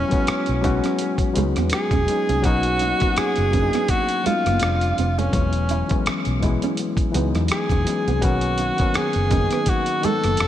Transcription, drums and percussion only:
0.11 kick medium
0.11 closed hi-hat soft
0.27 cross-stick loud
0.27 closed hi-hat medium
0.46 closed hi-hat soft
0.64 kick medium
0.64 closed hi-hat soft
0.84 cross-stick soft
0.84 closed hi-hat soft
0.99 closed hi-hat medium
1.18 kick medium
1.18 closed hi-hat soft
1.36 closed hi-hat medium
1.56 cross-stick soft
1.56 closed hi-hat soft
1.70 cross-stick medium
1.70 closed hi-hat medium
1.91 kick medium
1.91 closed hi-hat soft
2.08 closed hi-hat medium
2.29 closed hi-hat soft
2.44 kick medium
2.44 closed hi-hat medium
2.63 closed hi-hat soft
2.79 closed hi-hat medium
3.00 kick medium
3.00 closed hi-hat soft
3.16 cross-stick medium
3.16 closed hi-hat medium
3.36 closed hi-hat soft
3.53 kick medium
3.53 closed hi-hat soft
3.73 cross-stick soft
3.73 closed hi-hat soft
3.88 kick medium
3.88 closed hi-hat medium
4.09 closed hi-hat soft
4.26 closed hi-hat medium
4.46 cross-stick soft
4.46 closed hi-hat soft
4.59 cross-stick medium
4.59 closed hi-hat medium
4.81 closed hi-hat soft
4.98 closed hi-hat soft
5.19 closed hi-hat soft
5.33 kick loud
5.33 closed hi-hat medium
5.53 closed hi-hat soft
5.69 closed hi-hat medium
5.89 kick medium
5.89 closed hi-hat soft
6.06 cross-stick loud
6.06 closed hi-hat medium
6.25 closed hi-hat soft
6.43 kick medium
6.43 closed hi-hat soft
6.62 closed hi-hat soft
6.77 closed hi-hat medium
6.97 kick medium
6.97 closed hi-hat soft
7.14 closed hi-hat medium
7.35 cross-stick soft
7.35 closed hi-hat soft
7.48 cross-stick medium
7.48 closed hi-hat medium
7.70 kick medium
7.70 closed hi-hat soft
7.87 closed hi-hat medium
8.08 closed hi-hat soft
8.22 kick loud
8.22 closed hi-hat medium
8.41 closed hi-hat soft
8.58 closed hi-hat medium
8.78 kick medium
8.78 closed hi-hat soft
8.94 cross-stick medium
8.94 closed hi-hat soft
9.13 closed hi-hat soft
9.31 kick medium
9.31 closed hi-hat soft
9.51 cross-stick soft
9.51 closed hi-hat soft
9.66 kick medium
9.66 closed hi-hat medium
9.86 closed hi-hat soft
10.03 closed hi-hat medium
10.24 cross-stick soft
10.24 closed hi-hat soft
10.37 cross-stick medium
10.37 closed hi-hat medium

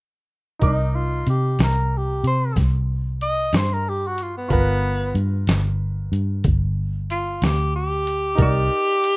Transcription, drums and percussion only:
0.62 kick medium
0.62 closed hi-hat medium
1.27 closed hi-hat medium
1.59 snare medium
1.59 closed hi-hat medium
2.24 closed hi-hat medium
2.56 kick medium
2.56 snare soft
2.56 closed hi-hat medium
3.21 closed hi-hat medium
3.53 snare medium
3.53 closed hi-hat medium
4.18 closed hi-hat medium
4.50 kick medium
4.50 closed hi-hat medium
5.15 closed hi-hat soft
5.47 snare medium
5.47 closed hi-hat medium
6.13 closed hi-hat soft
6.44 kick medium
6.44 closed hi-hat medium
7.10 closed hi-hat medium
7.42 snare medium
7.42 closed hi-hat medium
8.07 closed hi-hat medium
8.38 kick medium
8.38 closed hi-hat medium
9.04 closed hi-hat medium

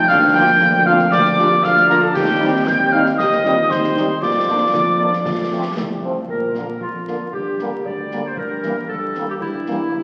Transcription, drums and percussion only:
0.09 concert bass drum medium
0.09 snare medium
0.60 concert bass drum medium
0.60 snare medium
0.99 snare soft
1.12 concert bass drum medium
1.12 snare medium
1.25 snare soft
1.39 snare medium
1.64 concert bass drum medium
1.64 snare medium
1.77 snare soft
1.90 snare medium
2.16 concert bass drum medium
2.16 snare medium
2.16 crash soft
2.67 concert bass drum medium
2.67 snare medium
3.06 snare soft
3.19 concert bass drum medium
3.19 snare medium
3.32 snare medium
3.45 snare soft
3.71 concert bass drum medium
3.71 snare medium
3.84 snare medium
3.97 snare medium
4.22 concert bass drum medium
4.22 snare medium
4.74 concert bass drum medium
4.74 snare medium
5.13 snare soft
5.25 concert bass drum medium
5.25 snare medium
5.77 concert bass drum medium
5.77 snare medium
6.28 concert bass drum medium
6.55 snare soft
6.81 concert bass drum medium
7.08 snare soft
7.33 concert bass drum medium
7.59 snare soft
7.85 concert bass drum medium
8.11 snare soft
8.37 concert bass drum medium
8.63 snare soft
8.89 concert bass drum medium
9.15 snare soft
9.40 concert bass drum medium
9.66 snare soft
9.92 concert bass drum medium

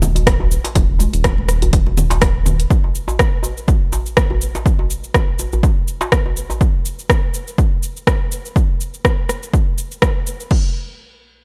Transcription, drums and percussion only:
0.02 high conga medium
0.02 low conga loud
0.02 cabasa loud
0.15 closed hi-hat soft
0.15 djembe tone medium
0.15 cabasa medium
0.27 kick loud
0.27 cross-stick loud
0.27 closed hi-hat medium
0.27 muted conga medium
0.27 cabasa soft
0.40 djembe tone medium
0.40 djembe bass medium
0.51 cabasa loud
0.64 closed hi-hat soft
0.64 djembe slap medium
0.64 cabasa medium
0.75 kick loud
0.75 closed hi-hat medium
0.75 muted conga medium
0.75 djembe tone medium
0.75 low conga loud
0.75 cabasa soft
0.99 closed hi-hat soft
0.99 djembe tone medium
0.99 high conga medium
0.99 cabasa medium
1.13 closed hi-hat soft
1.13 muted conga soft
1.13 high conga medium
1.13 cabasa medium
1.24 kick loud
1.24 cross-stick loud
1.24 closed hi-hat soft
1.24 djembe tone medium
1.24 cabasa soft
1.38 high conga medium
1.49 cross-stick medium
1.49 closed hi-hat soft
1.49 muted conga soft
1.49 cabasa medium
1.62 closed hi-hat soft
1.62 djembe tone medium
1.62 djembe bass medium
1.62 cabasa medium
1.73 kick loud
1.73 closed hi-hat medium
1.73 cabasa soft
1.86 muted conga soft
1.86 djembe tone medium
1.97 low conga medium
1.97 cabasa medium
2.10 closed hi-hat soft
2.10 djembe slap medium
2.10 djembe tone medium
2.10 cabasa medium
2.21 kick loud
2.21 cross-stick loud
2.21 closed hi-hat medium
2.21 muted conga soft
2.21 cabasa soft
2.46 djembe tone medium
2.46 low conga medium
2.46 cabasa loud
2.60 closed hi-hat soft
2.60 cabasa medium
2.70 kick loud
2.70 cabasa soft
2.84 djembe tone medium
2.95 cabasa medium
3.08 djembe tone medium
3.08 cabasa soft
3.19 kick loud
3.19 cross-stick loud
3.19 cabasa soft
3.43 djembe tone medium
3.43 cabasa medium
3.57 cabasa soft
3.68 kick loud
3.68 djembe tone medium
3.68 cabasa soft
3.93 djembe tone medium
3.93 cabasa medium
4.06 cabasa medium
4.17 kick loud
4.17 cross-stick loud
4.17 cabasa soft
4.30 djembe tone medium
4.30 djembe bass medium
4.41 cabasa medium
4.55 djembe slap medium
4.55 djembe tone medium
4.55 cabasa medium
4.66 kick loud
4.66 cabasa soft
4.79 djembe tone medium
4.90 cabasa medium
5.04 cabasa soft
5.14 kick loud
5.14 cross-stick medium
5.14 djembe tone medium
5.14 cabasa soft
5.39 djembe tone medium
5.39 cabasa medium
5.53 djembe bass medium
5.53 cabasa soft
5.63 kick loud
5.63 djembe tone medium
5.63 cabasa soft
5.88 cabasa medium
6.01 djembe slap medium
6.01 djembe tone medium
6.01 cabasa soft
6.12 kick medium
6.12 cross-stick loud
6.12 cabasa soft
6.26 djembe tone medium
6.37 cabasa medium
6.50 djembe tone medium
6.50 cabasa soft
6.61 kick loud
6.61 cabasa soft
6.85 cabasa medium
6.99 cabasa soft
7.10 kick medium
7.10 cross-stick medium
7.10 cabasa soft
7.34 cabasa medium
7.48 cabasa soft
7.58 kick loud
7.58 cabasa soft
7.83 cabasa medium
7.97 cabasa soft
8.07 kick loud
8.07 cross-stick loud
8.07 cabasa soft
8.32 cabasa medium
8.45 cabasa soft
8.56 kick loud
8.56 cabasa soft
8.81 cabasa medium
8.94 cabasa soft
9.05 kick loud
9.05 cross-stick medium
9.05 cabasa soft
9.29 cross-stick medium
9.29 cabasa medium
9.43 cabasa soft
9.54 kick loud
9.54 cabasa soft
9.78 cabasa medium
9.92 cabasa soft
10.02 kick medium
10.02 cross-stick loud
10.02 cabasa soft
10.27 cabasa medium
10.40 cabasa soft
10.51 kick loud
10.51 crash medium

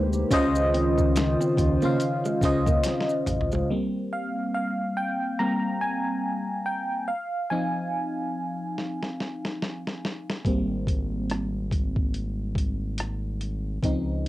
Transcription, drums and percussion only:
0.13 maracas soft
0.31 kick medium
0.31 closed hi-hat medium
0.31 maracas medium
0.55 maracas soft
0.74 closed hi-hat medium
0.98 kick medium
0.98 maracas soft
1.16 finger snap medium
1.16 snare loud
1.16 closed hi-hat medium
1.16 maracas medium
1.41 maracas soft
1.57 kick medium
1.57 closed hi-hat medium
1.57 maracas soft
1.82 maracas soft
2.00 closed hi-hat medium
2.00 maracas medium
2.25 maracas medium
2.41 kick medium
2.41 closed hi-hat medium
2.41 maracas medium
2.66 kick loud
2.66 maracas soft
2.84 finger snap medium
2.84 snare medium
2.84 closed hi-hat medium
2.84 maracas medium
3.01 snare medium
3.09 maracas soft
3.26 closed hi-hat medium
3.26 mid tom medium
3.26 maracas soft
3.41 floor tom medium
3.52 floor tom medium
3.52 maracas soft
8.78 snare soft
9.03 snare soft
9.20 snare soft
9.45 snare medium
9.62 snare medium
9.87 snare medium
10.05 snare medium
10.30 snare medium
10.45 kick medium
10.45 closed hi-hat medium
10.87 kick medium
10.87 closed hi-hat medium
11.30 cross-stick medium
11.30 closed hi-hat medium
11.71 kick medium
11.71 closed hi-hat soft
11.96 kick medium
12.14 closed hi-hat medium
12.55 kick medium
12.55 closed hi-hat medium
12.98 cross-stick medium
12.98 closed hi-hat medium
13.41 closed hi-hat soft
13.83 kick medium
13.83 closed hi-hat medium

